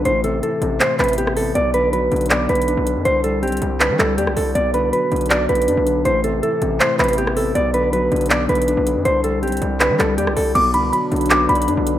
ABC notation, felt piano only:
X:1
M:4/4
L:1/8
Q:1/4=160
K:Bphr
V:1 name="Felt piano" clef=bass
A,, C, E, C, A,, C, B, C, | B,, D, F, D, B,, D, D D, | D, G, C G, D, G, d G, | B,, D, F, D, B,, D, D D, |
A,, C, E, C, A,, C, B, C, | B,, D, F, D, B,, D, D D, | D, G, C G, D, G, d G, | B,, D, F, D, B,, D, D D, |]